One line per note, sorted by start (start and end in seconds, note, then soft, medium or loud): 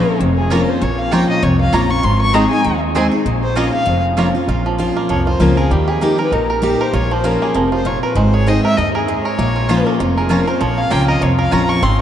0.00 0.18 A#2 medium
0.00 0.20 F3 medium
0.00 0.20 A#3 medium
0.00 0.20 C#4 medium
0.00 0.20 F4 medium
0.00 0.16 C#5 loud
0.20 0.62 F1 medium
0.20 0.79 F2 medium
0.37 0.53 G#4 medium
0.50 0.80 F3 medium
0.50 0.80 A#3 medium
0.50 0.59 A#3 medium
0.50 0.61 C#4 medium
0.50 0.80 C#4 medium
0.50 0.61 F4 medium
0.50 0.81 F4 medium
0.50 0.54 F4 medium
0.50 0.71 A#4 medium
0.50 0.61 C#5 loud
0.50 0.62 A#5 medium
0.69 0.83 C5 medium
0.82 1.24 A#1 medium
0.82 1.40 A#2 medium
0.82 1.00 C#5 medium
0.99 1.13 F5 medium
1.11 1.41 F3 medium
1.11 1.20 A#3 medium
1.11 1.42 A#3 medium
1.11 1.22 C#4 medium
1.11 1.42 C#4 medium
1.11 1.22 F4 loud
1.11 1.15 F4 medium
1.11 1.42 F4 medium
1.11 1.22 C#5 medium
1.11 1.29 G5 loud
1.11 1.23 A#5 loud
1.29 1.44 D#5 medium
1.43 1.69 C2 medium
1.43 2.01 F2 medium
1.43 1.60 C#5 medium
1.61 1.75 F5 medium
1.72 1.99 A#1 medium
1.72 1.89 F3 medium
1.72 1.90 A#3 medium
1.72 1.81 A#3 medium
1.72 1.83 C#4 loud
1.72 1.90 C#4 medium
1.72 1.83 F4 medium
1.72 1.89 F4 loud
1.72 1.77 F4 medium
1.72 1.83 C#5 loud
1.72 1.92 A#5 medium
1.72 1.84 A#5 loud
1.90 2.04 C#4 soft
1.90 2.03 F4 medium
1.90 2.05 C#6 loud
2.03 2.46 G#1 medium
2.03 2.62 G#2 medium
2.03 2.21 C6 loud
2.21 2.35 C#6 loud
2.33 2.50 G#3 medium
2.33 2.44 C4 medium
2.33 2.51 C4 medium
2.33 2.42 C4 medium
2.33 2.51 D#4 medium
2.33 2.43 D#4 medium
2.33 2.44 G#4 medium
2.33 2.50 G#4 medium
2.33 2.43 G#4 medium
2.33 2.45 D#5 medium
2.33 2.45 G#5 medium
2.33 2.49 A#5 loud
2.50 2.65 D#4 soft
2.50 2.64 G#4 medium
2.50 2.79 G#5 loud
2.64 3.07 D#2 medium
2.64 3.23 D#3 medium
2.95 3.12 G#3 medium
2.95 3.05 C4 medium
2.95 3.12 C4 medium
2.95 3.03 C4 medium
2.95 3.12 D#4 medium
2.95 3.04 D#4 medium
2.95 3.06 G#4 loud
2.95 3.10 G#4 medium
2.95 3.04 G#4 medium
2.95 3.06 D#5 loud
2.95 3.06 G#5 medium
3.11 3.26 D#4 soft
3.11 3.25 G#4 medium
3.26 3.68 A#1 medium
3.26 3.85 A#2 medium
3.43 3.58 C5 loud
3.55 3.73 F3 medium
3.55 3.73 A#3 medium
3.55 3.64 A#3 medium
3.55 3.67 C#4 medium
3.55 3.73 C#4 medium
3.55 3.67 F4 medium
3.55 3.71 F4 loud
3.55 3.59 F4 medium
3.55 3.67 C#5 medium
3.55 3.72 D#5 medium
3.55 3.67 A#5 loud
3.72 3.87 C#4 soft
3.72 3.86 F4 medium
3.72 4.02 F5 medium
3.86 4.29 F1 medium
3.86 4.45 F2 medium
4.17 4.34 F3 medium
4.17 4.34 A#3 medium
4.17 4.26 A#3 medium
4.17 4.28 C#4 medium
4.17 4.34 C#4 medium
4.17 4.28 F4 medium
4.17 4.33 F4 medium
4.17 4.21 F4 medium
4.17 4.28 C#5 medium
4.17 4.28 A#5 medium
4.35 4.49 C#4 soft
4.35 4.48 F4 medium
4.48 4.90 A#1 medium
4.48 5.07 A#2 medium
4.48 4.78 F4 medium
4.66 5.07 F3 medium
4.78 5.08 F3 medium
4.78 5.08 A#3 medium
4.78 5.09 C#4 medium
4.78 5.24 F4 medium
4.78 5.09 F4 medium
4.97 6.01 A#3 medium
5.09 5.36 C2 medium
5.09 5.68 F2 medium
5.09 5.54 F3 medium
5.09 5.26 C#5 medium
5.27 5.39 F4 medium
5.27 5.43 C5 medium
5.40 5.66 C#2 medium
5.40 5.57 F3 medium
5.40 5.57 A#3 medium
5.40 5.57 C#4 medium
5.40 5.71 F4 medium
5.40 5.56 F4 medium
5.40 5.57 A#4 medium
5.57 5.71 C#4 soft
5.57 5.70 F4 medium
5.57 5.73 G#4 medium
5.57 6.18 A#4 medium
5.71 6.13 D#2 medium
5.71 6.30 D#3 medium
5.71 6.15 G3 medium
5.71 5.90 G4 medium
5.88 6.29 G4 medium
5.88 6.05 G#4 medium
6.01 6.18 G3 medium
6.01 6.46 A#3 medium
6.01 6.18 A#3 medium
6.01 6.18 D#4 medium
6.01 6.17 G4 medium
6.01 6.20 A#4 medium
6.18 6.32 D#4 soft
6.18 6.31 G4 medium
6.18 6.49 A#4 medium
6.18 6.34 B4 loud
6.32 6.74 A#1 medium
6.32 6.91 A#2 medium
6.32 6.77 D#4 medium
6.32 6.83 A#4 medium
6.50 6.80 A#4 medium
6.62 6.92 G3 medium
6.62 6.92 A#3 medium
6.62 6.92 D#4 medium
6.62 6.93 G4 medium
6.62 6.92 G4 loud
6.81 6.94 A#4 medium
6.81 6.96 C5 medium
6.93 7.35 A#1 medium
6.93 7.52 A#2 medium
6.93 7.23 F4 medium
6.93 7.13 C#5 medium
7.11 7.52 F3 medium
7.11 7.27 C5 medium
7.24 7.53 F3 medium
7.24 7.53 A#3 medium
7.24 7.54 C#4 medium
7.24 7.68 F4 medium
7.24 7.54 F4 loud
7.24 7.44 A#4 medium
7.42 7.83 A#3 medium
7.42 7.58 G#4 medium
7.54 7.97 F1 medium
7.54 7.84 C3 medium
7.54 7.99 F3 medium
7.54 7.73 A#4 medium
7.72 7.85 F4 medium
7.72 7.88 C5 medium
7.85 8.14 A#2 medium
7.85 8.16 F4 medium
7.85 8.02 C#5 medium
8.03 8.16 A#4 medium
8.03 8.19 B4 medium
8.15 8.57 G#1 medium
8.15 8.74 G#2 medium
8.15 8.60 G#3 medium
8.15 8.35 C5 medium
8.34 8.75 G#4 medium
8.34 8.49 C#5 loud
8.47 8.76 G#3 medium
8.47 8.76 C4 medium
8.47 8.91 C4 medium
8.47 8.76 D#4 medium
8.47 8.77 G#4 loud
8.47 8.63 D#5 medium
8.64 8.94 A#4 medium
8.64 8.79 E5 loud
8.77 9.19 D#2 medium
8.77 9.07 G2 medium
8.77 9.22 D#4 medium
8.77 8.94 D#5 loud
8.94 9.09 G#4 medium
8.94 9.24 A#4 medium
9.07 9.37 G#2 medium
9.07 9.39 G#4 medium
9.07 9.23 C5 medium
9.24 9.38 A#4 medium
9.24 9.95 C#5 medium
9.39 9.80 A#1 medium
9.39 9.97 A#2 medium
9.39 9.86 A#3 medium
9.56 9.69 F4 medium
9.69 9.98 F3 medium
9.69 9.98 A#3 medium
9.69 9.79 C#4 medium
9.69 9.99 C#4 medium
9.69 9.79 F4 loud
9.69 9.99 F4 medium
9.69 9.79 C#5 loud
9.69 9.79 A#5 loud
9.87 10.27 A#3 medium
10.00 10.42 F1 medium
10.00 10.58 F2 medium
10.00 10.29 F4 medium
10.17 10.31 G#4 medium
10.17 10.46 A#4 medium
10.29 10.46 F3 medium
10.29 10.46 A#3 medium
10.29 10.40 C#4 medium
10.29 10.47 C#4 medium
10.29 10.40 F4 medium
10.29 10.74 F4 medium
10.29 10.46 F4 medium
10.29 10.49 A#4 medium
10.29 10.40 C#5 medium
10.29 10.41 A#5 loud
10.47 10.61 C#4 soft
10.47 10.60 F4 medium
10.47 10.88 A#4 medium
10.47 10.62 C5 medium
10.60 10.82 A#1 medium
10.60 11.19 A#2 medium
10.60 11.05 F3 medium
10.60 10.79 C#5 medium
10.78 10.93 F5 loud
10.90 11.17 C#2 medium
10.90 11.20 F3 medium
10.90 11.20 A#3 medium
10.90 11.35 A#3 medium
10.90 11.01 C#4 medium
10.90 11.20 C#4 medium
10.90 11.01 F4 medium
10.90 11.21 F4 medium
10.90 11.01 C#5 medium
10.90 11.08 G5 loud
10.90 11.01 A#5 loud
11.08 11.37 A#4 medium
11.08 11.24 D#5 medium
11.21 11.47 C2 medium
11.21 11.80 F2 medium
11.21 11.51 F4 medium
11.21 11.39 C#5 medium
11.39 11.68 A#4 medium
11.39 11.53 F5 loud
11.51 11.78 A#1 medium
11.51 11.81 F3 medium
11.51 11.81 A#3 medium
11.51 11.62 C#4 medium
11.51 11.81 C#4 medium
11.51 11.62 F4 medium
11.51 11.83 F4 medium
11.51 11.82 F4 medium
11.51 11.62 C#5 loud
11.51 11.71 A#5 loud
11.51 11.62 A#5 loud
11.69 11.82 A#4 medium
11.69 11.84 C#6 loud
11.82 12.01 G#1 medium
11.82 12.01 G#2 loud
11.82 12.01 C4 medium
11.82 12.00 C6 medium